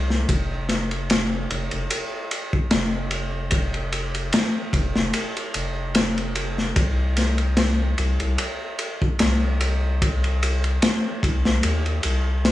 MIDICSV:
0, 0, Header, 1, 3, 480
1, 0, Start_track
1, 0, Tempo, 810811
1, 166, Time_signature, 4, 2, 24, 8
1, 7411, End_track
2, 0, Start_track
2, 0, Title_t, "Analog synth bass"
2, 0, Program_c, 0, 38
2, 0, Note_on_c, 0, 36, 76
2, 150, Note_off_c, 0, 36, 0
2, 173, Note_on_c, 0, 29, 99
2, 869, Note_off_c, 0, 29, 0
2, 893, Note_on_c, 0, 29, 102
2, 1005, Note_off_c, 0, 29, 0
2, 1022, Note_on_c, 0, 29, 92
2, 1116, Note_off_c, 0, 29, 0
2, 1614, Note_on_c, 0, 29, 94
2, 2549, Note_off_c, 0, 29, 0
2, 2803, Note_on_c, 0, 29, 94
2, 2920, Note_off_c, 0, 29, 0
2, 2938, Note_on_c, 0, 29, 93
2, 3034, Note_off_c, 0, 29, 0
2, 3287, Note_on_c, 0, 29, 74
2, 3986, Note_off_c, 0, 29, 0
2, 4006, Note_on_c, 0, 36, 99
2, 4705, Note_off_c, 0, 36, 0
2, 4730, Note_on_c, 0, 36, 98
2, 4843, Note_off_c, 0, 36, 0
2, 4863, Note_on_c, 0, 36, 93
2, 4956, Note_off_c, 0, 36, 0
2, 5453, Note_on_c, 0, 36, 89
2, 6389, Note_off_c, 0, 36, 0
2, 6650, Note_on_c, 0, 36, 103
2, 6763, Note_off_c, 0, 36, 0
2, 6782, Note_on_c, 0, 36, 95
2, 6876, Note_off_c, 0, 36, 0
2, 6893, Note_on_c, 0, 39, 97
2, 7103, Note_off_c, 0, 39, 0
2, 7131, Note_on_c, 0, 36, 81
2, 7411, Note_off_c, 0, 36, 0
2, 7411, End_track
3, 0, Start_track
3, 0, Title_t, "Drums"
3, 61, Note_on_c, 9, 38, 34
3, 120, Note_off_c, 9, 38, 0
3, 170, Note_on_c, 9, 36, 94
3, 171, Note_on_c, 9, 51, 75
3, 230, Note_off_c, 9, 36, 0
3, 230, Note_off_c, 9, 51, 0
3, 407, Note_on_c, 9, 38, 41
3, 410, Note_on_c, 9, 51, 60
3, 466, Note_off_c, 9, 38, 0
3, 469, Note_off_c, 9, 51, 0
3, 539, Note_on_c, 9, 51, 38
3, 598, Note_off_c, 9, 51, 0
3, 650, Note_on_c, 9, 51, 77
3, 656, Note_on_c, 9, 38, 103
3, 709, Note_off_c, 9, 51, 0
3, 715, Note_off_c, 9, 38, 0
3, 891, Note_on_c, 9, 51, 60
3, 950, Note_off_c, 9, 51, 0
3, 1014, Note_on_c, 9, 51, 39
3, 1073, Note_off_c, 9, 51, 0
3, 1128, Note_on_c, 9, 51, 87
3, 1187, Note_off_c, 9, 51, 0
3, 1368, Note_on_c, 9, 51, 63
3, 1428, Note_off_c, 9, 51, 0
3, 1499, Note_on_c, 9, 36, 84
3, 1558, Note_off_c, 9, 36, 0
3, 1602, Note_on_c, 9, 51, 79
3, 1604, Note_on_c, 9, 38, 111
3, 1662, Note_off_c, 9, 51, 0
3, 1664, Note_off_c, 9, 38, 0
3, 1839, Note_on_c, 9, 51, 61
3, 1899, Note_off_c, 9, 51, 0
3, 2076, Note_on_c, 9, 51, 86
3, 2084, Note_on_c, 9, 36, 103
3, 2135, Note_off_c, 9, 51, 0
3, 2143, Note_off_c, 9, 36, 0
3, 2213, Note_on_c, 9, 51, 38
3, 2273, Note_off_c, 9, 51, 0
3, 2323, Note_on_c, 9, 51, 60
3, 2382, Note_off_c, 9, 51, 0
3, 2454, Note_on_c, 9, 51, 43
3, 2513, Note_off_c, 9, 51, 0
3, 2561, Note_on_c, 9, 51, 83
3, 2568, Note_on_c, 9, 38, 105
3, 2620, Note_off_c, 9, 51, 0
3, 2627, Note_off_c, 9, 38, 0
3, 2800, Note_on_c, 9, 36, 83
3, 2803, Note_on_c, 9, 51, 67
3, 2860, Note_off_c, 9, 36, 0
3, 2862, Note_off_c, 9, 51, 0
3, 2933, Note_on_c, 9, 38, 55
3, 2993, Note_off_c, 9, 38, 0
3, 3040, Note_on_c, 9, 51, 81
3, 3099, Note_off_c, 9, 51, 0
3, 3177, Note_on_c, 9, 51, 42
3, 3236, Note_off_c, 9, 51, 0
3, 3280, Note_on_c, 9, 51, 61
3, 3340, Note_off_c, 9, 51, 0
3, 3521, Note_on_c, 9, 51, 88
3, 3526, Note_on_c, 9, 38, 107
3, 3580, Note_off_c, 9, 51, 0
3, 3585, Note_off_c, 9, 38, 0
3, 3656, Note_on_c, 9, 51, 45
3, 3715, Note_off_c, 9, 51, 0
3, 3762, Note_on_c, 9, 51, 61
3, 3821, Note_off_c, 9, 51, 0
3, 3897, Note_on_c, 9, 38, 36
3, 3956, Note_off_c, 9, 38, 0
3, 4002, Note_on_c, 9, 51, 87
3, 4003, Note_on_c, 9, 36, 103
3, 4061, Note_off_c, 9, 51, 0
3, 4062, Note_off_c, 9, 36, 0
3, 4242, Note_on_c, 9, 51, 68
3, 4249, Note_on_c, 9, 38, 41
3, 4302, Note_off_c, 9, 51, 0
3, 4309, Note_off_c, 9, 38, 0
3, 4368, Note_on_c, 9, 51, 38
3, 4428, Note_off_c, 9, 51, 0
3, 4480, Note_on_c, 9, 38, 103
3, 4481, Note_on_c, 9, 51, 82
3, 4540, Note_off_c, 9, 38, 0
3, 4540, Note_off_c, 9, 51, 0
3, 4723, Note_on_c, 9, 51, 59
3, 4782, Note_off_c, 9, 51, 0
3, 4853, Note_on_c, 9, 51, 42
3, 4912, Note_off_c, 9, 51, 0
3, 4963, Note_on_c, 9, 51, 77
3, 5022, Note_off_c, 9, 51, 0
3, 5201, Note_on_c, 9, 51, 59
3, 5261, Note_off_c, 9, 51, 0
3, 5338, Note_on_c, 9, 36, 83
3, 5397, Note_off_c, 9, 36, 0
3, 5441, Note_on_c, 9, 51, 91
3, 5447, Note_on_c, 9, 38, 96
3, 5500, Note_off_c, 9, 51, 0
3, 5506, Note_off_c, 9, 38, 0
3, 5687, Note_on_c, 9, 51, 68
3, 5746, Note_off_c, 9, 51, 0
3, 5931, Note_on_c, 9, 36, 97
3, 5931, Note_on_c, 9, 51, 86
3, 5990, Note_off_c, 9, 36, 0
3, 5990, Note_off_c, 9, 51, 0
3, 6062, Note_on_c, 9, 51, 43
3, 6121, Note_off_c, 9, 51, 0
3, 6172, Note_on_c, 9, 51, 70
3, 6232, Note_off_c, 9, 51, 0
3, 6298, Note_on_c, 9, 51, 43
3, 6358, Note_off_c, 9, 51, 0
3, 6407, Note_on_c, 9, 51, 80
3, 6410, Note_on_c, 9, 38, 124
3, 6466, Note_off_c, 9, 51, 0
3, 6469, Note_off_c, 9, 38, 0
3, 6648, Note_on_c, 9, 36, 86
3, 6653, Note_on_c, 9, 51, 65
3, 6707, Note_off_c, 9, 36, 0
3, 6712, Note_off_c, 9, 51, 0
3, 6780, Note_on_c, 9, 38, 57
3, 6840, Note_off_c, 9, 38, 0
3, 6885, Note_on_c, 9, 51, 78
3, 6945, Note_off_c, 9, 51, 0
3, 7020, Note_on_c, 9, 51, 38
3, 7079, Note_off_c, 9, 51, 0
3, 7122, Note_on_c, 9, 51, 67
3, 7181, Note_off_c, 9, 51, 0
3, 7370, Note_on_c, 9, 38, 98
3, 7372, Note_on_c, 9, 51, 74
3, 7411, Note_off_c, 9, 38, 0
3, 7411, Note_off_c, 9, 51, 0
3, 7411, End_track
0, 0, End_of_file